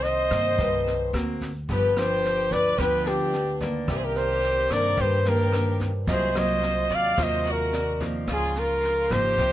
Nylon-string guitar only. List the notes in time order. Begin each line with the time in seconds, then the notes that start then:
Already playing: C3 D#3 A#3 D4
0.32 D#3 A#3
0.59 G2
1.15 A#3 C4 F#4
1.70 G2 F3 B3 D4
1.97 F3 D4
2.80 D3 F3 B3 D4
3.62 D#3 A#3 D4
3.89 C3
4.72 D#3 A#3 D4
5.00 G2
5.27 D#3 A#3 D4
5.54 D#3 A#3 D4
6.09 C3 F#3 A#3 F4
6.37 F#3 A#3 F4
7.18 C3 F#3 A#3 F4
8.00 F3 A#3 D#4
8.28 C#3
9.11 F3 A#3 D#4
9.39 C3